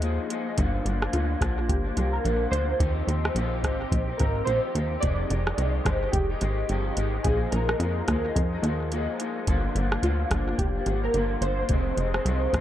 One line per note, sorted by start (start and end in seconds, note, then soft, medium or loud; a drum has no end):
0.00 0.19 D#2 loud
0.00 0.28 A#2 medium
0.00 0.29 F3 medium
0.00 0.30 G#3 medium
0.00 0.26 D#4 medium
0.00 0.31 D#4 medium
0.00 closed hi-hat medium
0.29 0.46 A#2 medium
0.29 0.47 F3 medium
0.29 0.46 G#3 medium
0.29 0.45 D#4 medium
0.29 closed hi-hat medium
0.46 0.56 F3 soft
0.46 0.58 G#3 medium
0.46 0.57 D#4 medium
0.57 0.80 G1 loud
0.57 0.85 G2 medium
0.57 0.83 D3 medium
0.57 0.84 F3 loud
0.57 0.85 A#3 medium
0.57 0.86 D4 loud
0.57 kick medium
0.57 closed hi-hat medium
0.85 1.08 G1 loud
0.85 1.02 D3 medium
0.85 1.02 F3 medium
0.85 1.02 A#3 medium
0.85 1.00 D4 medium
0.85 closed hi-hat soft
1.02 1.12 F3 soft
1.02 1.12 A#3 soft
1.02 1.13 D4 medium
1.02 cross-stick medium
1.12 1.36 D2 medium
1.12 1.40 G2 medium
1.12 1.39 D3 medium
1.12 1.40 F3 medium
1.12 1.41 A#3 medium
1.12 1.41 D4 medium
1.12 1.70 F4 medium
1.12 closed hi-hat medium
1.40 1.70 A#1 medium
1.40 1.57 D3 medium
1.40 1.58 F3 medium
1.40 1.57 A#3 medium
1.40 1.55 D4 medium
1.40 kick medium
1.40 cross-stick medium
1.40 closed hi-hat soft
1.57 1.86 F3 soft
1.57 1.84 A#3 soft
1.57 1.83 D4 soft
1.68 1.91 G1 loud
1.68 2.14 G4 medium
1.68 kick medium
1.68 closed hi-hat medium
1.84 1.95 F3 soft
1.84 1.96 A#3 medium
1.84 1.96 D4 medium
1.95 2.19 C2 medium
1.95 2.23 D3 medium
1.95 2.23 F3 medium
1.95 2.23 A#3 medium
1.95 2.24 D4 medium
1.95 closed hi-hat medium
2.12 2.53 A#4 medium
2.23 2.47 A#1 medium
2.23 2.52 G2 medium
2.23 2.50 D3 medium
2.23 2.52 F3 medium
2.23 2.52 A#3 medium
2.23 2.53 D4 medium
2.23 closed hi-hat soft
2.51 2.74 D2 medium
2.51 2.69 D3 medium
2.51 2.69 F3 medium
2.51 2.68 A#3 medium
2.51 2.67 D4 medium
2.51 4.23 C5 medium
2.51 closed hi-hat medium
2.68 2.78 F3 soft
2.68 2.80 A#3 soft
2.68 2.80 D4 soft
2.79 3.02 D#2 loud
2.79 3.07 D#3 medium
2.79 3.05 F3 medium
2.79 3.07 C4 medium
2.79 3.07 D#4 medium
2.79 3.08 G4 medium
2.79 kick loud
2.79 closed hi-hat medium
3.06 3.30 D#2 medium
3.06 3.24 F3 medium
3.06 3.25 C4 medium
3.06 3.24 D#4 medium
3.06 3.23 G4 medium
3.06 closed hi-hat soft
3.24 3.36 C4 soft
3.24 3.36 D#4 soft
3.24 3.35 G4 medium
3.24 cross-stick medium
3.35 3.65 A#1 medium
3.35 3.63 D#3 medium
3.35 3.62 F3 medium
3.35 3.63 C4 medium
3.35 3.64 D#4 medium
3.35 3.65 G4 medium
3.35 closed hi-hat medium
3.63 3.86 G#1 medium
3.63 3.80 F3 medium
3.63 3.81 C4 medium
3.63 3.80 D#4 medium
3.63 3.78 G4 medium
3.63 kick medium
3.63 cross-stick medium
3.63 closed hi-hat soft
3.79 4.09 C4 soft
3.79 4.08 D#4 soft
3.79 4.06 G4 medium
3.91 4.14 A#1 medium
3.91 kick medium
3.91 closed hi-hat medium
4.07 4.19 C4 soft
4.07 4.19 D#4 medium
4.07 4.19 G4 soft
4.17 4.42 G#1 medium
4.17 4.46 F3 medium
4.17 4.47 C4 medium
4.17 4.47 D#4 medium
4.17 4.44 A#4 medium
4.17 kick loud
4.17 closed hi-hat soft
4.22 4.47 G4 medium
4.45 4.60 A#1 medium
4.45 4.74 D#3 medium
4.45 4.73 F3 medium
4.45 4.74 C4 medium
4.45 4.75 D#4 medium
4.45 4.97 C5 medium
4.45 closed hi-hat soft
4.49 4.76 G4 medium
4.74 4.97 D#2 medium
4.74 4.91 F3 medium
4.74 4.92 C4 medium
4.74 4.91 D#4 medium
4.74 4.89 G4 medium
4.74 closed hi-hat medium
4.91 5.03 C4 soft
4.91 5.02 D#4 soft
4.91 5.02 G4 soft
5.00 5.25 F1 loud
5.00 5.30 F2 medium
5.00 5.31 C3 medium
5.00 5.29 D#3 medium
5.00 5.30 G#3 medium
5.00 5.31 D#4 medium
5.00 5.31 G4 medium
5.00 5.87 D5 loud
5.00 kick medium
5.00 closed hi-hat medium
5.30 5.53 F1 loud
5.30 5.47 D#3 medium
5.30 5.47 G#3 soft
5.30 5.46 D#4 medium
5.30 5.45 G4 medium
5.30 closed hi-hat soft
5.46 5.57 D#3 soft
5.46 5.58 G#3 soft
5.46 5.58 D#4 soft
5.46 5.58 G4 soft
5.46 cross-stick medium
5.58 5.80 C2 loud
5.58 5.86 F2 medium
5.58 5.86 C3 medium
5.58 5.83 D#3 medium
5.58 5.85 G#3 medium
5.58 5.86 D#4 medium
5.58 5.87 G4 medium
5.58 closed hi-hat medium
5.84 6.08 G1 loud
5.84 6.02 D#3 medium
5.84 6.02 G#3 medium
5.84 6.01 D#4 medium
5.84 6.00 G4 medium
5.84 6.14 C5 medium
5.84 kick medium
5.84 cross-stick medium
5.84 closed hi-hat soft
6.01 6.31 D#3 soft
6.01 6.31 G#3 soft
6.01 6.30 D#4 soft
6.01 6.29 G4 soft
6.11 6.36 F1 medium
6.11 7.20 G4 medium
6.11 kick medium
6.11 closed hi-hat medium
6.30 6.40 D#3 soft
6.30 6.41 G#3 soft
6.30 6.42 D#4 medium
6.30 6.41 G4 medium
6.41 6.64 G#1 medium
6.41 6.69 D#3 medium
6.41 6.69 G#3 medium
6.41 6.69 D#4 medium
6.41 6.70 G4 medium
6.41 closed hi-hat medium
6.69 6.92 G1 medium
6.69 6.97 F2 medium
6.69 6.97 C3 medium
6.69 6.95 D#3 medium
6.69 6.96 G#3 medium
6.69 6.98 D#4 medium
6.69 6.98 G4 medium
6.69 closed hi-hat soft
6.97 7.19 G#1 medium
6.97 7.14 D#3 medium
6.97 7.14 G#3 medium
6.97 7.13 D#4 medium
6.97 7.12 G4 medium
6.97 closed hi-hat medium
7.13 7.25 D#3 soft
7.13 7.26 G#3 soft
7.13 7.25 D#4 soft
7.13 7.25 G4 soft
7.23 7.47 A#1 loud
7.23 7.52 A#2 medium
7.23 7.53 F3 medium
7.23 7.53 G#3 medium
7.23 7.53 G#4 medium
7.23 kick medium
7.23 closed hi-hat medium
7.27 7.54 D#4 medium
7.52 7.75 A#1 loud
7.52 7.69 A#2 medium
7.52 7.70 F3 medium
7.52 7.70 G#3 medium
7.52 7.68 D#4 medium
7.52 8.59 A#4 medium
7.52 closed hi-hat soft
7.69 7.80 F3 soft
7.69 7.81 G#3 soft
7.69 7.80 D#4 medium
7.69 cross-stick medium
7.80 8.02 F2 loud
7.80 8.07 A#2 medium
7.80 8.08 F3 medium
7.80 8.09 G#3 medium
7.80 8.10 D#4 medium
7.80 closed hi-hat medium
8.08 8.30 D#2 medium
8.08 8.25 A#2 medium
8.08 8.26 F3 medium
8.08 8.26 G#3 medium
8.08 8.24 D#4 medium
8.08 kick medium
8.08 cross-stick medium
8.08 closed hi-hat soft
8.25 8.54 F3 soft
8.25 8.53 G#3 medium
8.25 8.51 D#4 medium
8.36 8.58 F2 loud
8.36 kick medium
8.36 closed hi-hat medium
8.53 8.64 F3 soft
8.53 8.65 G#3 medium
8.53 8.64 D#4 medium
8.62 9.08 D#2 loud
8.62 8.91 A#2 medium
8.62 8.92 F3 medium
8.62 8.92 G#3 medium
8.62 closed hi-hat medium
8.67 8.93 D#4 medium
8.92 9.18 A#2 medium
8.92 9.19 F3 medium
8.92 9.20 G#3 loud
8.92 9.21 D#4 loud
8.92 closed hi-hat medium
9.19 9.36 A#2 medium
9.19 9.37 F3 medium
9.19 9.37 G#3 medium
9.19 9.35 D#4 medium
9.19 closed hi-hat medium
9.36 9.47 F3 soft
9.36 9.48 G#3 soft
9.36 9.47 D#4 soft
9.47 9.70 G1 loud
9.47 9.75 G2 medium
9.47 9.74 D3 loud
9.47 9.75 F3 loud
9.47 9.76 A#3 loud
9.47 9.76 D4 loud
9.47 kick medium
9.47 closed hi-hat medium
9.75 9.98 G1 loud
9.75 9.92 D3 medium
9.75 9.93 F3 medium
9.75 9.92 A#3 medium
9.75 9.91 D4 medium
9.75 closed hi-hat soft
9.92 10.03 F3 soft
9.92 10.04 A#3 medium
9.92 10.03 D4 medium
9.92 cross-stick medium
10.03 10.25 D2 medium
10.03 10.31 G2 medium
10.03 10.30 D3 medium
10.03 10.31 F3 medium
10.03 10.32 A#3 medium
10.03 10.32 D4 medium
10.03 10.60 F4 medium
10.03 closed hi-hat medium
10.31 10.53 G1 medium
10.31 10.48 D3 medium
10.31 10.48 F3 medium
10.31 10.49 A#3 medium
10.31 10.47 D4 medium
10.31 kick medium
10.31 cross-stick medium
10.31 closed hi-hat soft
10.49 10.77 F3 soft
10.49 10.76 A#3 soft
10.49 10.74 D4 medium
10.58 10.81 F1 medium
10.58 11.04 G4 medium
10.58 kick medium
10.58 closed hi-hat medium
10.75 10.87 F3 soft
10.75 10.87 A#3 soft
10.75 10.86 D4 soft
10.86 11.09 G#1 medium
10.86 11.13 D3 medium
10.86 11.14 F3 medium
10.86 11.14 A#3 medium
10.86 11.15 D4 medium
10.86 closed hi-hat medium
11.04 11.44 A#4 medium
11.14 11.37 G1 medium
11.14 11.42 G2 medium
11.14 11.41 D3 medium
11.14 11.42 F3 medium
11.14 11.43 A#3 medium
11.14 11.43 D4 medium
11.14 closed hi-hat soft
11.41 11.64 G1 medium
11.41 11.59 D3 medium
11.41 11.59 F3 medium
11.41 11.59 A#3 medium
11.41 11.58 D4 medium
11.41 12.61 C5 medium
11.41 closed hi-hat medium
11.59 11.71 F3 soft
11.59 11.71 A#3 soft
11.59 11.70 D4 soft
11.69 11.92 F1 medium
11.69 11.98 F2 medium
11.69 11.96 C3 medium
11.69 11.98 D#3 medium
11.69 11.98 G#3 medium
11.69 11.99 C4 medium
11.69 kick loud
11.69 closed hi-hat medium
11.97 12.20 F1 medium
11.97 12.14 C3 medium
11.97 12.15 D#3 medium
11.97 12.15 G#3 medium
11.97 12.14 C4 medium
11.97 closed hi-hat soft
12.14 12.25 D#3 soft
12.14 12.25 G#3 medium
12.14 12.26 C4 medium
12.14 cross-stick medium
12.25 12.48 C2 medium
12.25 12.53 F2 medium
12.25 12.51 C3 medium
12.25 12.53 D#3 medium
12.25 12.54 G#3 medium
12.25 12.54 C4 loud
12.25 closed hi-hat medium
12.53 12.61 A#1 medium
12.53 12.61 C3 medium
12.53 12.61 D#3 medium
12.53 12.61 G#3 medium
12.53 12.61 C4 medium
12.53 kick medium
12.53 cross-stick medium
12.53 closed hi-hat soft